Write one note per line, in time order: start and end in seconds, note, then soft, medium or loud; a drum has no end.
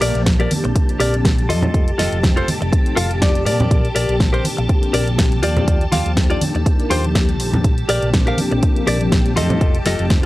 0.00 0.11 A#1 medium
0.00 7.64 G4 medium
0.00 0.21 G4 loud
0.00 0.21 A#4 loud
0.00 0.21 D5 loud
0.00 7.63 A5 medium
0.00 open hi-hat loud
0.15 0.45 A#1 medium
0.15 0.48 F3 medium
0.15 0.48 A#3 medium
0.15 0.48 C4 medium
0.15 0.49 D4 medium
0.15 0.49 C5 medium
0.15 closed hi-hat soft
0.26 kick loud
0.26 snare loud
0.26 closed hi-hat medium
0.40 0.51 G4 medium
0.40 0.51 A#4 medium
0.40 0.52 D5 medium
0.40 closed hi-hat soft
0.50 0.73 F3 medium
0.50 0.73 A#3 medium
0.50 0.73 C4 medium
0.50 0.73 D4 medium
0.50 0.73 G4 medium
0.50 open hi-hat loud
0.50 high conga medium
0.64 0.72 A#1 loud
0.64 muted clean electric guitar stroke medium
0.64 closed hi-hat soft
0.75 muted clean electric guitar stroke soft
0.75 kick loud
0.75 closed hi-hat medium
0.89 closed hi-hat soft
1.00 1.51 A#1 loud
1.00 1.14 G4 loud
1.00 1.14 A#4 medium
1.00 1.14 D5 loud
1.00 open hi-hat loud
1.13 1.47 F3 medium
1.13 1.47 A#3 medium
1.13 1.47 C4 medium
1.13 1.47 D4 medium
1.13 1.47 G4 loud
1.13 closed hi-hat soft
1.24 muted clean electric guitar stroke soft
1.24 kick loud
1.24 snare loud
1.24 closed hi-hat medium
1.39 closed hi-hat soft
1.49 1.67 F2 loud
1.49 1.71 F3 medium
1.49 1.72 C4 medium
1.49 1.72 D#4 medium
1.49 1.90 F4 medium
1.49 1.90 A4 medium
1.49 1.90 D#5 medium
1.49 open hi-hat loud
1.62 low conga medium
1.74 1.91 F1 medium
1.74 1.84 A3 medium
1.74 1.84 G4 medium
1.74 kick loud
1.74 closed hi-hat medium
1.88 closed hi-hat soft
1.98 2.07 F1 medium
1.98 2.17 F4 loud
1.98 2.18 A4 loud
1.98 2.18 D#5 loud
1.98 snare medium
1.98 open hi-hat loud
2.12 2.42 F1 medium
2.12 2.45 F3 medium
2.12 2.45 A3 medium
2.12 2.45 C4 medium
2.12 2.46 D#4 medium
2.12 2.46 C5 medium
2.12 closed hi-hat soft
2.23 kick loud
2.23 snare loud
2.23 closed hi-hat medium
2.36 2.48 F4 medium
2.36 2.48 A4 medium
2.36 2.48 C5 medium
2.36 closed hi-hat soft
2.48 2.70 F3 medium
2.48 2.70 A3 medium
2.48 muted fingered electric bass stroke soft
2.48 open hi-hat loud
2.48 high conga medium
2.61 2.69 F1 loud
2.61 muted clean electric guitar stroke medium
2.61 closed hi-hat soft
2.72 3.07 F3 medium
2.72 3.07 A3 medium
2.72 3.07 C4 medium
2.72 3.07 D#4 medium
2.72 muted clean electric guitar stroke soft
2.72 kick loud
2.72 closed hi-hat medium
2.86 closed hi-hat soft
2.96 3.48 F1 medium
2.96 3.10 F4 loud
2.96 3.11 A4 loud
2.96 3.11 F5 loud
2.96 open hi-hat loud
3.10 3.43 F3 medium
3.10 3.44 A3 medium
3.10 3.44 C4 medium
3.10 3.44 D#4 medium
3.10 closed hi-hat soft
3.21 3.45 D5 medium
3.21 muted clean electric guitar stroke soft
3.21 kick loud
3.21 snare loud
3.21 closed hi-hat medium
3.35 closed hi-hat soft
3.45 3.63 A#2 medium
3.45 3.68 F3 medium
3.45 3.86 G4 medium
3.45 3.86 A#4 medium
3.45 3.87 D5 loud
3.45 open hi-hat loud
3.60 closed hi-hat soft
3.60 low conga medium
3.71 3.88 A#1 medium
3.71 kick loud
3.71 closed hi-hat medium
3.85 closed hi-hat soft
3.95 4.04 A#1 medium
3.95 4.14 G4 loud
3.95 4.14 A#4 medium
3.95 4.15 D5 loud
3.95 open hi-hat loud
4.08 4.39 A#1 medium
4.08 4.42 F3 medium
4.08 4.42 A#3 medium
4.08 4.42 C4 medium
4.08 4.42 D4 medium
4.08 closed hi-hat soft
4.20 kick loud
4.20 snare loud
4.20 closed hi-hat medium
4.33 4.44 G4 medium
4.33 4.45 A#4 medium
4.33 4.45 C5 medium
4.33 closed hi-hat soft
4.44 4.66 F3 medium
4.44 4.66 A#3 medium
4.44 4.67 G4 medium
4.44 open hi-hat loud
4.44 high conga medium
4.57 4.66 A#1 loud
4.57 muted clean electric guitar stroke medium
4.57 closed hi-hat soft
4.69 5.04 A#3 medium
4.69 muted clean electric guitar stroke soft
4.69 kick loud
4.69 closed hi-hat medium
4.83 closed hi-hat soft
4.93 5.43 A#1 medium
4.93 5.07 G4 loud
4.93 5.07 A#4 medium
4.93 5.08 D5 loud
4.93 open hi-hat loud
5.07 5.40 F3 medium
5.07 5.40 A#3 medium
5.07 5.40 C4 medium
5.07 5.41 D4 medium
5.07 5.41 G4 loud
5.07 closed hi-hat soft
5.18 muted clean electric guitar stroke soft
5.18 kick loud
5.18 snare loud
5.18 closed hi-hat medium
5.32 closed hi-hat soft
5.42 5.60 D#2 medium
5.42 5.65 F3 medium
5.42 5.65 A#3 medium
5.42 5.83 F4 medium
5.42 5.65 G4 medium
5.42 5.83 G4 medium
5.42 5.84 D5 loud
5.42 open hi-hat loud
5.57 closed hi-hat soft
5.57 low conga medium
5.67 5.85 D#2 medium
5.67 5.77 F3 medium
5.67 5.78 A#3 medium
5.67 kick loud
5.67 closed hi-hat medium
5.81 closed hi-hat soft
5.92 6.01 D#2 medium
5.92 6.11 F4 loud
5.92 6.11 G4 medium
5.92 6.12 F5 loud
5.92 snare medium
5.92 open hi-hat loud
5.92 high conga medium
6.05 6.36 D#2 medium
6.05 6.38 F3 medium
6.05 6.39 A#3 medium
6.05 6.39 D4 medium
6.05 6.39 D#4 medium
6.05 6.39 C5 medium
6.05 closed hi-hat soft
6.17 kick loud
6.17 snare loud
6.17 closed hi-hat medium
6.30 6.41 F4 medium
6.30 6.42 G4 medium
6.30 6.42 D5 medium
6.30 closed hi-hat soft
6.41 6.63 F3 medium
6.41 6.63 A#3 medium
6.41 6.63 D4 medium
6.41 6.63 D#4 medium
6.41 6.64 G4 medium
6.41 muted fingered electric bass stroke soft
6.41 open hi-hat loud
6.41 high conga medium
6.55 6.62 D#2 loud
6.55 muted clean electric guitar stroke medium
6.55 closed hi-hat soft
6.65 7.01 F3 medium
6.65 7.01 A#3 medium
6.65 7.01 A#4 loud
6.65 muted clean electric guitar stroke soft
6.65 kick loud
6.65 closed hi-hat medium
6.80 closed hi-hat soft
6.90 7.40 D#2 medium
6.90 7.04 F4 loud
6.90 7.04 G4 medium
6.90 7.04 C5 loud
6.90 open hi-hat loud
7.03 7.37 F3 medium
7.03 7.37 A#3 medium
7.03 7.37 D4 medium
7.03 7.37 D#4 medium
7.03 7.37 G4 loud
7.03 closed hi-hat soft
7.15 muted clean electric guitar stroke soft
7.15 kick loud
7.15 snare loud
7.15 closed hi-hat medium
7.29 closed hi-hat soft
7.39 7.57 A#1 medium
7.39 7.62 F3 medium
7.39 7.62 A#3 medium
7.39 7.62 D4 medium
7.39 7.62 D#4 medium
7.39 7.62 G4 medium
7.39 open hi-hat loud
7.53 closed hi-hat soft
7.53 low conga medium
7.64 7.81 A#1 medium
7.64 7.74 F3 medium
7.64 7.74 A#3 medium
7.64 7.75 C4 medium
7.64 10.26 G4 medium
7.64 10.26 A5 medium
7.64 kick loud
7.64 closed hi-hat medium
7.78 closed hi-hat soft
7.89 7.98 A#1 medium
7.89 8.08 G4 loud
7.89 8.08 A#4 loud
7.89 8.08 D5 loud
7.89 open hi-hat loud
8.02 8.32 A#1 medium
8.02 8.35 F3 medium
8.02 8.35 A#3 medium
8.02 8.35 C4 medium
8.02 8.36 D4 medium
8.02 8.36 C5 medium
8.02 closed hi-hat soft
8.13 kick loud
8.13 snare loud
8.13 closed hi-hat medium
8.27 8.38 G4 medium
8.27 8.38 A#4 medium
8.27 8.39 F5 loud
8.27 closed hi-hat soft
8.37 8.60 F3 medium
8.37 8.60 A#3 medium
8.37 8.60 C4 medium
8.37 8.60 D4 medium
8.37 8.60 G4 medium
8.37 open hi-hat loud
8.37 high conga medium
8.51 8.59 A#1 loud
8.51 muted clean electric guitar stroke medium
8.51 closed hi-hat soft
8.63 8.98 F3 medium
8.63 8.98 A#3 medium
8.63 muted clean electric guitar stroke soft
8.63 kick loud
8.63 closed hi-hat medium
8.76 closed hi-hat soft
8.87 9.38 A#1 loud
8.87 9.01 G4 loud
8.87 9.01 A#4 medium
8.87 9.01 D5 loud
8.87 open hi-hat loud
9.01 9.34 F3 loud
9.01 9.34 A#3 medium
9.01 9.34 C4 medium
9.01 9.34 D4 medium
9.01 9.34 G4 loud
9.01 closed hi-hat soft
9.12 muted clean electric guitar stroke soft
9.12 kick loud
9.12 snare loud
9.12 closed hi-hat medium
9.26 closed hi-hat soft
9.36 9.53 F2 loud
9.36 9.58 F3 medium
9.36 9.77 F4 medium
9.36 9.59 G4 medium
9.36 9.77 A4 medium
9.36 9.77 D#5 medium
9.36 open hi-hat loud
9.50 closed hi-hat soft
9.50 low conga medium
9.61 9.78 F1 loud
9.61 kick loud
9.61 closed hi-hat medium
9.75 closed hi-hat soft
9.86 9.95 F1 medium
9.86 10.05 F4 loud
9.86 10.05 A4 medium
9.86 10.05 D#5 loud
9.86 snare medium
9.86 open hi-hat loud
9.98 10.26 F1 medium
9.98 10.26 F3 medium
9.98 10.26 A3 medium
9.98 10.26 C4 medium
9.98 10.26 D#4 medium
9.98 10.26 C5 medium
9.98 closed hi-hat soft
10.10 kick loud
10.10 snare loud
10.10 closed hi-hat medium